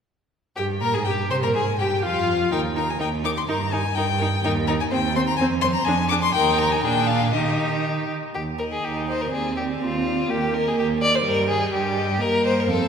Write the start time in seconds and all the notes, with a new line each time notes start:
0.56 G2 G4 G5
0.81 A#2 A#4 A#5
0.93 G#2 G#4 G#5
1.04 G2 G4 G5
1.30 C3 C5 C6
1.42 A#2 A#4 A#5
1.54 G#2 G#4 G#5
1.79 G2 G4 G5
2.03 F2 F4 F5
2.51 D#2 D#4 A#4 G5
2.76 D#4 A#4 A#5
2.91 G#5
2.99 D#2 D#4 A#4 G5
3.24 D#4 A#4 D6
3.38 C6
3.48 G2 D#4 A#4 A#5
3.72 D#4 A#4 G#5
3.95 G2 D#4 A#4 G5
4.18 D#4 A#4
4.43 D#2 D#4 A#4 G5
4.68 D#4 A#4 A#5
4.80 G#5
4.91 D#2 C4 C5 G5
5.16 C4 C5 C6
5.28 A#5
5.37 F2 C4 C5 G#5
5.61 C4 C5 C6
5.74 A#5
5.85 F2 D4 G#4 G#5
6.09 D4 G#4 D6
6.23 C6
6.34 D#2 D#4 A#4 G5
6.58 A#5
6.72 G#5
6.83 A#2 D4 G#4 G5
7.07 F5
7.33 D#3 D#4 G4 D#5
8.34 D#2 G4
8.59 A#4 D#5
8.72 G#4
8.83 D#2 D#4 G4
9.09 C5 D#5
9.21 A#4
9.32 D#2 C4 G#4 D5
9.57 G4 D5
9.80 D#2 F4
10.05 D5
10.28 D#2 A#3 G4
10.52 A#4 D#5
10.68 G#4
10.76 D#2 G4
11.00 D5 D#5
11.15 C5
11.24 G2 G3 A#4 D#5
11.47 G#4 D#5
11.72 G2 G4
11.95 D#5
12.19 G2 A#3 A#4 D#5
12.43 C5 D#5
12.60 A#4
12.67 F2 C4 A4 F5